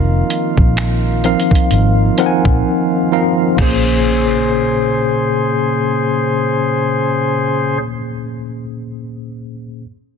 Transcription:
0.00 0.21 F1 loud
0.00 3.54 D#3 medium
0.00 3.55 A#3 medium
0.00 3.55 F4 medium
0.30 closed hi-hat medium
0.57 1.33 A#1 medium
0.57 kick medium
0.77 finger snap loud
0.77 closed hi-hat medium
1.24 2.07 F3 medium
1.24 2.07 C4 medium
1.24 2.07 D#4 medium
1.24 2.07 A#4 medium
1.24 2.07 F5 medium
1.24 closed hi-hat soft
1.40 closed hi-hat medium
1.51 kick loud
1.55 closed hi-hat medium
1.71 2.09 G#1 medium
1.71 closed hi-hat medium
2.18 3.00 F3 medium
2.18 3.01 C4 medium
2.18 3.01 D#4 medium
2.18 3.01 A#4 medium
2.18 2.26 F#5 medium
2.18 closed hi-hat medium
2.26 3.04 G#5 medium
2.45 2.61 A#1 medium
2.45 kick medium
3.12 3.53 F3 medium
3.12 3.53 C4 medium
3.12 3.53 D#4 medium
3.12 3.53 A#4 medium
3.12 3.54 F5 medium
3.56 7.77 A#1 loud
3.56 7.75 A#2 medium
3.56 7.77 C#3 medium
3.56 7.76 A#3 medium
3.56 7.78 C#4 medium
3.56 7.77 G#4 medium
3.56 7.77 C5 medium
3.56 kick loud
3.56 crash medium
3.61 7.80 G#4 medium
3.61 7.81 C5 medium

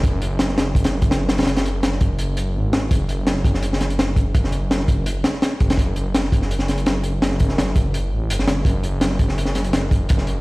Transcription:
0.03 1.46 F#1 loud
0.03 kick loud
0.03 closed hi-hat medium
0.22 closed hi-hat medium
0.39 snare loud
0.39 closed hi-hat medium
0.48 snare soft
0.58 snare loud
0.58 closed hi-hat medium
0.75 kick medium
0.75 closed hi-hat medium
0.84 snare loud
0.84 closed hi-hat medium
1.02 kick medium
1.02 closed hi-hat medium
1.11 snare loud
1.11 closed hi-hat medium
1.29 snare loud
1.29 closed hi-hat medium
1.38 snare loud
1.38 closed hi-hat medium
1.43 snare medium
1.43 closed hi-hat medium
1.47 2.56 F#1 loud
1.47 snare loud
1.47 closed hi-hat medium
1.57 snare loud
1.57 closed hi-hat medium
1.66 closed hi-hat medium
1.83 snare loud
1.83 closed hi-hat loud
1.92 snare soft
2.01 kick loud
2.01 closed hi-hat medium
2.19 closed hi-hat medium
2.37 closed hi-hat medium
2.55 2.89 G#1 medium
2.73 snare loud
2.73 closed hi-hat medium
2.91 4.33 F#1 loud
2.91 kick loud
2.91 closed hi-hat medium
3.09 closed hi-hat medium
3.27 snare loud
3.27 closed hi-hat medium
3.36 snare soft
3.45 kick medium
3.45 closed hi-hat medium
3.54 snare medium
3.63 closed hi-hat medium
3.73 snare medium
3.81 snare medium
3.81 closed hi-hat medium
3.90 closed hi-hat soft
3.99 snare loud
3.99 closed hi-hat medium
4.16 kick medium
4.16 closed hi-hat medium
4.35 5.23 F#1 loud
4.35 kick loud
4.35 closed hi-hat medium
4.44 snare medium
4.52 closed hi-hat medium
4.71 snare loud
4.71 closed hi-hat medium
4.79 snare soft
4.88 kick medium
4.88 closed hi-hat medium
5.06 closed hi-hat medium
5.24 snare loud
5.24 closed hi-hat medium
5.34 snare soft
5.42 snare loud
5.42 closed hi-hat medium
5.60 5.77 F#1 medium
5.60 kick medium
5.60 closed hi-hat medium
5.70 snare loud
5.70 closed hi-hat medium
5.77 7.20 F#1 loud
5.77 kick loud
5.77 closed hi-hat medium
5.96 closed hi-hat medium
6.15 snare loud
6.15 closed hi-hat medium
6.24 snare soft
6.32 kick medium
6.32 closed hi-hat medium
6.42 snare soft
6.51 closed hi-hat medium
6.59 snare medium
6.68 snare soft
6.68 closed hi-hat medium
6.78 closed hi-hat soft
6.86 snare loud
6.86 closed hi-hat medium
7.04 closed hi-hat medium
7.22 8.13 F#1 loud
7.22 snare loud
7.22 closed hi-hat medium
7.32 snare soft
7.40 kick medium
7.40 closed hi-hat medium
7.49 snare medium
7.58 snare loud
7.58 closed hi-hat medium
7.67 snare soft
7.76 kick loud
7.76 closed hi-hat medium
7.94 closed hi-hat medium
8.12 8.31 A1 loud
8.30 8.64 F#1 medium
8.30 closed hi-hat medium
8.39 snare soft
8.48 snare loud
8.48 closed hi-hat medium
8.65 10.08 F#1 loud
8.65 kick loud
8.65 closed hi-hat medium
8.84 closed hi-hat medium
9.01 snare loud
9.01 closed hi-hat loud
9.11 snare soft
9.19 kick loud
9.19 closed hi-hat medium
9.29 snare medium
9.38 closed hi-hat medium
9.45 snare medium
9.55 snare soft
9.55 closed hi-hat medium
9.64 closed hi-hat soft
9.73 snare loud
9.73 closed hi-hat medium
9.91 kick loud
9.91 closed hi-hat medium
10.09 10.41 F#1 loud
10.09 kick loud
10.09 closed hi-hat medium
10.18 snare medium
10.27 closed hi-hat medium

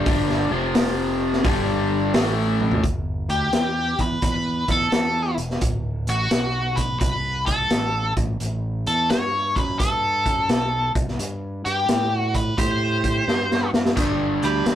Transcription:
0.05 0.49 G1 medium
0.05 0.50 G2 medium
0.05 0.50 D3 loud
0.05 0.51 G3 medium
0.05 kick loud
0.05 open hi-hat medium
0.30 snare soft
0.51 1.40 F1 medium
0.51 1.44 F2 medium
0.51 1.44 C3 loud
0.51 1.44 F3 loud
0.75 snare loud
0.75 open hi-hat medium
1.33 snare soft
1.44 2.10 G1 medium
1.44 2.13 G2 loud
1.44 2.14 D3 loud
1.44 2.14 G3 loud
1.44 kick loud
1.44 open hi-hat medium
2.14 2.80 A1 loud
2.14 2.83 A2 loud
2.14 2.83 E3 medium
2.14 2.83 A3 loud
2.14 snare loud
2.14 open hi-hat medium
2.60 high tom medium
2.71 floor tom medium
2.84 3.27 G1 medium
2.84 kick loud
2.84 closed hi-hat medium
3.29 3.52 D2 medium
3.29 4.01 G4 medium
3.29 closed hi-hat soft
3.53 3.97 E2 medium
3.53 snare medium
3.53 closed hi-hat medium
3.99 4.21 E2 medium
3.99 4.23 B4 loud
3.99 kick medium
3.99 closed hi-hat soft
4.22 4.66 E2 medium
4.22 4.71 B4 medium
4.22 kick medium
4.22 closed hi-hat medium
4.68 4.91 E2 medium
4.68 5.36 A4 medium
4.68 kick medium
4.68 closed hi-hat soft
4.92 5.36 E2 medium
4.92 snare loud
4.92 closed hi-hat medium
5.38 5.60 E1 medium
5.38 closed hi-hat medium
5.50 snare soft
5.61 6.06 D1 medium
5.61 kick loud
5.61 closed hi-hat medium
6.07 6.30 A1 medium
6.07 6.81 F#4 medium
6.07 closed hi-hat soft
6.31 snare medium
6.31 closed hi-hat medium
6.76 6.98 B4 loud
6.76 kick medium
6.76 closed hi-hat medium
7.00 7.67 C2 medium
7.00 7.46 B4 medium
7.00 kick loud
7.00 closed hi-hat medium
7.46 8.13 A4 medium
7.46 kick medium
7.46 closed hi-hat medium
7.70 8.14 A1 medium
7.70 snare medium
7.70 closed hi-hat medium
8.16 8.39 A1 medium
8.16 kick medium
8.16 closed hi-hat medium
8.40 8.84 A1 medium
8.40 closed hi-hat medium
8.87 9.09 E2 medium
8.87 9.11 A4 medium
8.87 closed hi-hat soft
9.10 9.54 G2 medium
9.10 9.58 C#5 loud
9.10 snare medium
9.10 closed hi-hat medium
9.56 9.79 F#2 medium
9.56 9.78 B4 medium
9.56 kick medium
9.56 closed hi-hat soft
9.79 10.23 G2 medium
9.79 10.91 A4 medium
9.79 kick loud
9.79 closed hi-hat medium
10.26 10.48 F#2 medium
10.26 kick medium
10.26 closed hi-hat medium
10.49 10.93 B1 medium
10.49 snare medium
10.49 closed hi-hat medium
10.95 11.18 C2 medium
10.95 kick medium
10.95 closed hi-hat medium
11.08 snare soft
11.19 11.63 G2 medium
11.19 closed hi-hat medium
11.65 11.88 G2 medium
11.65 12.15 G4 medium
11.65 closed hi-hat soft
11.89 12.54 A2 medium
11.89 snare medium
11.89 closed hi-hat medium
12.15 12.37 F#4 medium
12.34 12.58 B4 medium
12.34 kick medium
12.34 closed hi-hat medium
12.58 13.24 A2 medium
12.58 13.70 G4 medium
12.58 13.70 C5 medium
12.58 kick loud
12.58 closed hi-hat medium
13.04 kick medium
13.04 closed hi-hat medium
13.28 13.71 G2 medium
13.28 snare soft
13.51 snare soft
13.73 13.96 G2 medium
13.73 snare medium
13.85 snare medium
13.96 14.40 G1 medium
13.96 14.75 G2 medium
13.96 14.75 D3 medium
13.96 14.75 G3 medium
13.96 kick loud
13.96 closed hi-hat medium
13.96 splash medium
14.43 14.65 D2 medium
14.43 14.75 G4 medium
14.43 14.75 B4 medium
14.43 closed hi-hat soft
14.66 14.75 E2 medium
14.66 snare medium
14.66 closed hi-hat medium

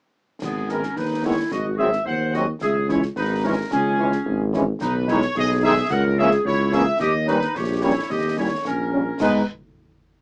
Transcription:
0.42 0.87 G#1 medium
0.42 0.68 B3 medium
0.42 0.68 G#4 medium
0.42 concert bass drum medium
0.42 snare medium
0.42 crash soft
0.69 0.79 D#3 medium
0.69 0.80 D#3 soft
0.69 0.79 G#3 soft
0.69 0.80 B3 soft
0.69 0.80 B3 medium
0.69 0.97 C#4 medium
0.69 0.95 A#4 medium
0.69 snare soft
0.83 snare soft
0.97 1.42 D#2 medium
0.97 1.24 D#4 medium
0.97 1.24 B4 medium
0.97 concert bass drum medium
0.97 snare medium
1.24 1.34 D#3 medium
1.24 1.34 G#3 medium
1.24 1.34 B3 medium
1.24 1.50 E4 medium
1.24 1.37 C#5 medium
1.51 1.97 G#1 medium
1.51 1.79 F#4 medium
1.51 1.64 D#5 medium
1.51 concert bass drum medium
1.51 snare medium
1.78 1.89 F#3 soft
1.78 1.89 F#3 medium
1.78 1.89 G#3 soft
1.78 1.89 C4 medium
1.78 1.91 G#4 medium
1.78 2.04 E5 medium
1.93 snare soft
2.05 2.52 D#2 medium
2.05 2.31 C5 medium
2.05 2.32 F#5 medium
2.05 concert bass drum medium
2.33 2.44 F#3 medium
2.33 2.45 F#3 medium
2.33 2.45 G#3 medium
2.33 2.44 C4 medium
2.33 2.45 C4 medium
2.33 2.47 F#4 medium
2.33 2.46 D#5 medium
2.33 snare soft
2.61 3.07 C#2 medium
2.61 2.87 G#4 medium
2.61 2.74 E5 medium
2.61 concert bass drum medium
2.61 snare medium
2.88 2.99 E3 medium
2.88 3.00 E3 medium
2.88 2.99 G#3 medium
2.88 2.99 C#4 medium
2.88 3.00 C#4 medium
2.88 3.02 E4 medium
2.88 3.00 C#5 medium
2.88 snare soft
3.03 snare soft
3.15 3.62 G#1 medium
3.15 3.42 D#4 medium
3.15 3.41 B4 medium
3.15 concert bass drum medium
3.15 snare medium
3.43 3.54 E3 medium
3.43 3.55 G#3 medium
3.43 3.54 C#4 medium
3.43 3.55 C#4 medium
3.43 3.58 C#4 medium
3.43 3.71 A#4 medium
3.71 4.17 C#2 medium
3.71 4.50 C#4 medium
3.71 4.49 G#4 medium
3.71 concert bass drum medium
3.71 snare medium
3.99 4.08 E3 medium
3.99 4.09 E3 medium
3.99 4.09 G#3 medium
3.99 4.09 C#4 medium
4.12 snare soft
4.26 4.71 G#1 medium
4.26 concert bass drum medium
4.53 4.63 E3 medium
4.53 4.64 E3 medium
4.53 4.63 G#3 medium
4.53 4.63 C#4 medium
4.53 snare soft
4.81 5.26 B1 medium
4.81 4.94 D#4 medium
4.81 5.06 B4 loud
4.81 concert bass drum medium
4.81 snare medium
4.81 crash soft
5.07 5.17 D#3 medium
5.07 5.17 G#3 medium
5.07 5.19 G#3 medium
5.07 5.18 D#4 medium
5.07 5.19 D#4 medium
5.07 5.21 E4 medium
5.07 5.36 C#5 loud
5.07 snare soft
5.22 snare soft
5.35 5.82 B1 medium
5.35 5.61 G#4 medium
5.35 5.48 D#5 loud
5.35 concert bass drum medium
5.35 snare medium
5.62 5.73 D#3 medium
5.62 5.72 G#3 medium
5.62 5.74 G#3 medium
5.62 5.73 D#4 medium
5.62 5.89 G#4 medium
5.62 5.89 E5 loud
5.89 6.36 C#2 medium
5.89 6.19 A#4 loud
5.89 6.02 F#5 loud
5.89 concert bass drum medium
5.89 snare medium
6.18 6.28 E3 medium
6.18 6.29 A#3 medium
6.18 6.28 A#3 medium
6.18 6.28 C#4 medium
6.18 6.29 C#4 medium
6.18 6.46 G#4 medium
6.18 6.30 E5 loud
6.31 snare medium
6.45 6.91 C#2 medium
6.45 6.74 E4 medium
6.45 6.71 C#5 loud
6.45 concert bass drum medium
6.72 6.83 E3 medium
6.72 6.83 A#3 medium
6.72 6.83 C#4 medium
6.72 6.85 G#4 medium
6.72 6.99 E5 loud
6.72 snare soft
7.00 7.46 D#2 medium
7.00 7.13 G4 medium
7.00 7.26 D#5 medium
7.00 concert bass drum medium
7.00 snare medium
7.27 7.37 G3 medium
7.27 7.38 G3 medium
7.27 7.37 A#3 medium
7.27 7.37 C#4 medium
7.27 7.53 D#4 medium
7.27 7.53 B4 loud
7.27 snare soft
7.42 snare medium
7.55 7.97 A#1 medium
7.55 7.83 G4 medium
7.55 7.80 C#5 medium
7.55 concert bass drum medium
7.55 snare medium
7.81 7.92 G3 medium
7.81 7.93 G3 medium
7.81 7.92 A#3 medium
7.81 7.92 C#4 medium
7.81 8.10 E4 medium
7.81 8.08 C#5 medium
8.09 8.56 D#2 medium
8.09 8.38 G4 medium
8.09 8.35 D#5 medium
8.09 concert bass drum medium
8.09 snare medium
8.37 8.47 G3 medium
8.37 8.47 G3 soft
8.37 8.48 A#3 soft
8.37 8.47 C#4 soft
8.37 8.47 C#4 medium
8.37 8.50 E4 medium
8.37 8.63 C#5 medium
8.65 9.11 A#1 medium
8.65 9.17 C#4 medium
8.65 9.17 A#4 medium
8.65 concert bass drum medium
8.65 snare medium
8.91 9.02 G3 medium
8.91 9.03 G3 soft
8.91 9.02 A#3 medium
8.91 9.02 C#4 soft
8.91 9.03 C#4 medium
9.20 9.44 G#2 medium
9.20 9.43 G#3 medium
9.20 9.44 G#3 medium
9.20 9.44 B3 medium
9.20 9.43 D#4 medium
9.20 9.44 D#4 medium
9.20 9.44 B4 medium
9.20 concert bass drum medium
9.20 snare medium
9.20 crash medium

